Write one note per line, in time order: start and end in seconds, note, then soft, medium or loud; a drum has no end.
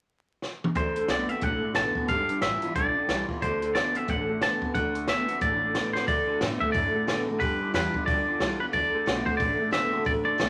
0.42 snare medium
0.64 mid tom medium
0.75 0.90 D2 medium
0.75 0.94 D3 medium
0.75 1.07 D3 medium
0.75 0.94 A3 medium
0.75 1.11 C5 medium
0.75 kick medium
0.75 closed hi-hat medium
0.95 1.08 D3 medium
0.95 1.08 A3 medium
0.95 muted upright bass stroke medium
0.95 closed hi-hat medium
1.08 1.26 C2 medium
1.08 1.28 D3 medium
1.08 1.27 D3 medium
1.08 1.29 A3 medium
1.08 1.28 B3 medium
1.08 1.29 C4 medium
1.08 1.28 F#4 medium
1.08 1.29 D5 medium
1.08 snare loud
1.08 closed hi-hat medium
1.29 1.41 D3 medium
1.29 1.41 B3 medium
1.29 1.43 C4 soft
1.29 1.42 F#4 medium
1.29 1.43 E5 medium
1.29 muted upright bass stroke medium
1.29 closed hi-hat medium
1.41 1.59 B1 medium
1.41 2.06 A2 medium
1.41 1.61 D3 medium
1.41 1.61 A3 medium
1.41 1.75 F#5 medium
1.41 kick loud
1.41 closed hi-hat medium
1.62 1.74 D3 medium
1.62 1.75 A3 medium
1.62 muted upright bass stroke medium
1.75 1.92 A1 medium
1.75 1.94 D3 medium
1.75 1.95 A3 medium
1.75 1.94 B3 loud
1.75 1.95 C4 medium
1.75 1.93 F#4 medium
1.75 2.08 A5 loud
1.75 snare loud
1.75 closed hi-hat medium
1.95 2.08 D3 medium
1.95 2.08 B3 medium
1.95 2.09 C4 soft
1.95 2.08 F#4 medium
1.95 muted upright bass stroke medium
1.95 kick medium
2.08 2.23 G1 medium
2.08 2.27 G2 medium
2.08 2.28 D3 medium
2.08 2.40 G3 medium
2.08 2.42 F5 medium
2.08 kick medium
2.08 closed hi-hat medium
2.29 2.41 G2 medium
2.29 2.42 D3 medium
2.29 muted upright bass stroke medium
2.29 closed hi-hat medium
2.41 2.59 A1 medium
2.41 2.61 G2 medium
2.41 2.61 E3 medium
2.41 2.61 G3 medium
2.41 2.62 B3 medium
2.41 2.60 F4 medium
2.41 2.75 E5 loud
2.41 snare loud
2.41 closed hi-hat medium
2.61 2.74 G2 medium
2.61 2.74 E3 medium
2.61 2.76 B3 soft
2.61 2.75 F4 medium
2.61 muted upright bass stroke medium
2.61 closed hi-hat medium
2.75 2.92 B1 medium
2.75 2.94 G2 medium
2.75 3.40 D3 medium
2.75 2.94 D3 loud
2.75 3.25 D5 medium
2.75 kick loud
2.75 closed hi-hat medium
2.95 3.07 G2 medium
2.95 3.08 D3 medium
2.95 muted upright bass stroke medium
3.08 3.25 C2 medium
3.08 3.27 G2 medium
3.08 3.27 E3 medium
3.08 3.28 G3 medium
3.08 3.28 B3 medium
3.08 3.27 F4 medium
3.08 snare loud
3.08 closed hi-hat medium
3.28 3.41 G2 medium
3.28 3.41 E3 medium
3.28 3.43 B3 soft
3.28 3.41 F4 medium
3.28 muted upright bass stroke medium
3.28 kick medium
3.42 3.79 D2 medium
3.42 3.60 D3 medium
3.42 3.74 D3 loud
3.42 3.60 A3 medium
3.42 3.73 C5 medium
3.42 kick loud
3.42 closed hi-hat medium
3.62 3.73 D3 medium
3.62 3.74 A3 medium
3.62 closed hi-hat medium
3.75 3.93 D3 medium
3.75 3.94 D3 medium
3.75 3.95 A3 medium
3.75 3.93 B3 medium
3.75 3.95 C4 medium
3.75 3.94 F#4 medium
3.75 3.96 D5 medium
3.75 snare loud
3.75 closed hi-hat medium
3.95 4.07 D3 medium
3.95 4.08 B3 medium
3.95 4.09 C4 soft
3.95 4.08 F#4 medium
3.95 4.10 E5 medium
3.95 muted upright bass stroke medium
3.95 closed hi-hat medium
4.08 4.46 A1 medium
4.08 4.72 A2 medium
4.08 4.26 D3 medium
4.08 4.27 A3 medium
4.08 4.42 F#5 loud
4.08 kick loud
4.08 closed hi-hat medium
4.28 4.39 D3 medium
4.28 4.41 A3 medium
4.41 4.59 D3 medium
4.41 4.61 D3 medium
4.41 4.62 A3 medium
4.41 4.60 B3 medium
4.41 4.62 C4 medium
4.41 4.60 F#4 medium
4.41 4.73 A5 loud
4.41 snare medium
4.41 closed hi-hat medium
4.61 4.73 D3 medium
4.61 4.74 B3 medium
4.61 4.76 C4 soft
4.61 4.74 F#4 medium
4.61 muted upright bass stroke medium
4.61 kick medium
4.74 5.12 D2 medium
4.74 4.93 D3 medium
4.74 5.07 D3 loud
4.74 4.93 A3 medium
4.74 5.09 F#5 medium
4.74 kick loud
4.74 closed hi-hat medium
4.95 5.07 D3 medium
4.95 5.07 A3 medium
4.95 closed hi-hat medium
5.08 5.26 D3 medium
5.08 5.28 D3 medium
5.08 5.28 A3 medium
5.08 5.26 B3 medium
5.08 5.28 C4 medium
5.08 5.27 F#4 medium
5.08 5.41 E5 medium
5.08 snare loud
5.08 closed hi-hat medium
5.28 5.40 D3 medium
5.28 5.40 B3 medium
5.28 5.42 C4 soft
5.28 5.41 F#4 medium
5.28 muted upright bass stroke medium
5.28 closed hi-hat medium
5.41 5.78 A1 medium
5.41 6.06 A2 medium
5.41 5.60 D3 medium
5.41 5.60 A3 medium
5.41 5.91 D5 medium
5.41 kick loud
5.41 closed hi-hat medium
5.61 5.73 D3 medium
5.61 5.74 A3 medium
5.74 5.92 D3 medium
5.74 5.94 D3 medium
5.74 5.95 A3 medium
5.74 5.93 B3 medium
5.74 5.95 C4 medium
5.74 5.94 F#4 medium
5.74 snare medium
5.74 closed hi-hat medium
5.93 6.07 D3 medium
5.93 6.07 B3 medium
5.93 6.08 F#4 medium
5.93 6.07 C5 medium
5.93 muted upright bass stroke medium
5.93 snare medium
5.98 6.09 C4 soft
6.08 6.27 D2 medium
6.08 6.26 D3 medium
6.08 6.40 D3 loud
6.08 6.26 A3 loud
6.08 6.39 D5 medium
6.08 kick loud
6.08 open hi-hat soft
6.28 6.40 D3 medium
6.28 6.40 A3 medium
6.28 muted upright bass stroke medium
6.41 6.61 A2 medium
6.41 6.59 D3 medium
6.41 6.73 D3 medium
6.41 6.74 A3 loud
6.41 6.60 B3 medium
6.41 6.74 C4 medium
6.41 6.74 F#4 medium
6.41 snare loud
6.41 open hi-hat medium
6.60 6.72 D3 medium
6.60 6.73 A3 medium
6.60 6.72 E5 medium
6.60 muted upright bass stroke medium
6.60 kick medium
6.72 6.93 F#2 medium
6.72 7.38 A2 medium
6.72 6.92 D3 medium
6.72 6.92 A3 medium
6.72 7.23 D5 medium
6.72 kick loud
6.72 open hi-hat medium
6.94 7.05 D3 medium
6.94 7.06 A3 medium
6.94 muted upright bass stroke medium
7.06 7.26 A2 medium
7.06 7.25 D3 medium
7.06 7.27 D3 medium
7.06 7.27 A3 loud
7.06 7.25 B3 medium
7.06 7.27 C4 medium
7.06 7.26 F#4 medium
7.06 snare loud
7.06 open hi-hat soft
7.27 7.39 D3 medium
7.27 7.40 A3 medium
7.27 7.41 C4 medium
7.27 7.40 F#4 medium
7.27 muted upright bass stroke soft
7.40 7.59 G2 medium
7.40 7.60 G2 medium
7.40 7.59 D3 medium
7.40 7.72 G3 loud
7.40 7.71 B4 medium
7.40 kick loud
7.40 open hi-hat soft
7.61 7.73 G2 medium
7.61 7.73 D3 medium
7.61 muted upright bass stroke soft
7.74 7.93 E2 medium
7.74 7.92 G2 medium
7.74 7.92 E3 medium
7.74 7.93 G3 medium
7.74 7.94 B3 loud
7.74 7.93 F4 loud
7.74 8.06 B4 medium
7.74 snare loud
7.74 open hi-hat medium
7.94 8.06 G2 medium
7.94 8.06 D3 medium
7.94 8.08 B3 soft
7.94 8.07 F4 medium
7.94 muted upright bass stroke medium
7.94 kick medium
8.06 8.26 D2 medium
8.06 8.25 G2 medium
8.06 8.71 D3 medium
8.06 8.25 D3 medium
8.06 8.60 D5 medium
8.06 kick loud
8.06 open hi-hat medium
8.27 8.39 G2 medium
8.27 8.40 D3 medium
8.27 muted upright bass stroke medium
8.40 8.59 C2 medium
8.40 8.59 G2 medium
8.40 8.59 E3 loud
8.40 8.60 G3 medium
8.40 8.60 B3 loud
8.40 8.59 F4 loud
8.40 snare loud
8.40 open hi-hat soft
8.60 8.73 G2 medium
8.60 8.73 D3 medium
8.60 8.74 B3 soft
8.60 8.73 F4 medium
8.60 8.65 B4 medium
8.60 muted upright bass stroke medium
8.73 8.93 D2 medium
8.73 9.05 D3 medium
8.73 8.92 D3 medium
8.73 8.92 A3 medium
8.73 9.26 D5 medium
8.73 kick medium
8.73 open hi-hat soft
8.94 9.05 D3 medium
8.94 9.06 A3 loud
8.94 muted upright bass stroke medium
9.06 9.26 B1 medium
9.06 9.25 D3 medium
9.06 9.26 A3 medium
9.06 9.25 B3 loud
9.06 9.26 C4 loud
9.06 9.25 F#4 medium
9.06 snare loud
9.06 open hi-hat medium
9.26 9.39 D3 medium
9.26 9.39 A3 medium
9.26 9.40 C4 soft
9.26 9.39 F#4 medium
9.26 9.37 C5 medium
9.26 muted upright bass stroke medium
9.26 kick medium
9.37 9.59 A1 medium
9.37 10.04 A2 medium
9.37 9.58 D3 medium
9.37 9.58 A3 medium
9.37 9.72 D5 medium
9.37 kick loud
9.37 open hi-hat soft
9.60 9.72 D3 medium
9.60 9.72 A3 medium
9.60 muted upright bass stroke medium
9.71 9.92 F#1 medium
9.71 9.91 D3 medium
9.71 9.92 A3 medium
9.71 9.91 B3 medium
9.71 9.92 C4 loud
9.71 9.90 F#4 medium
9.71 10.04 E5 loud
9.71 snare loud
9.71 open hi-hat medium
9.92 10.05 D3 medium
9.92 10.05 A3 loud
9.92 10.06 C4 soft
9.92 10.05 F#4 medium
9.92 muted upright bass stroke soft
10.05 10.25 A1 medium
10.05 10.37 D3 medium
10.05 10.24 D3 medium
10.05 10.24 A3 medium
10.05 10.12 D5 medium
10.05 kick loud
10.05 open hi-hat soft
10.25 10.38 D3 medium
10.25 10.38 A3 medium
10.25 10.49 D5 medium
10.25 muted upright bass stroke medium
10.38 10.49 B1 medium
10.38 10.49 D3 loud
10.38 10.49 D3 medium
10.38 10.49 A3 loud
10.38 10.49 B3 medium
10.38 10.49 C4 loud
10.38 10.49 F#4 loud
10.38 snare loud
10.38 open hi-hat soft